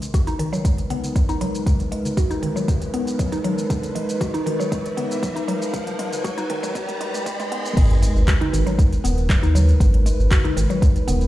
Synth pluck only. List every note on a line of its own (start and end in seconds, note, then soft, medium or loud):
0.14 0.26 F#4 medium
0.27 0.38 D#4 loud
0.39 0.51 D#3 loud
0.53 0.64 F#3 loud
0.90 1.02 B3 medium
1.16 1.28 F#3 medium
1.29 1.40 D#4 loud
1.41 1.54 F#3 loud
1.92 2.04 G#3 medium
2.17 2.29 F#4 medium
2.31 2.42 D#4 loud
2.43 2.55 D#3 loud
2.56 2.67 F#3 loud
2.94 3.06 B3 medium
3.19 3.31 F#3 medium
3.32 3.43 D#4 loud
3.44 3.57 F#3 loud
3.95 4.07 G#3 medium
4.21 4.33 F#4 medium
4.34 4.45 D#4 loud
4.46 4.58 D#3 loud
4.60 4.71 F#3 loud
4.97 5.09 B3 medium
5.23 5.35 F#3 medium
5.36 5.47 D#4 loud
5.48 5.61 F#3 loud
5.99 6.11 G#3 medium
6.24 6.36 F#4 medium
6.38 6.49 D#4 loud
6.50 6.62 D#3 loud
6.63 6.74 F#3 loud
7.01 7.08 G#3 medium
7.26 7.33 G#3 medium
7.40 7.50 G#3 loud
7.52 7.64 B3 medium
8.02 8.14 G#3 medium
8.28 8.40 F#4 medium
8.41 8.52 D#4 loud
8.53 8.65 D#3 loud
8.67 8.77 F#3 loud
9.04 9.16 B3 medium
9.30 9.42 F#3 medium
9.43 9.54 D#4 loud
9.55 9.68 F#3 loud
10.06 10.18 G#3 medium
10.31 10.43 F#4 medium
10.45 10.55 D#4 loud
10.57 10.69 D#3 loud
10.70 10.81 F#3 loud
11.08 11.20 B3 medium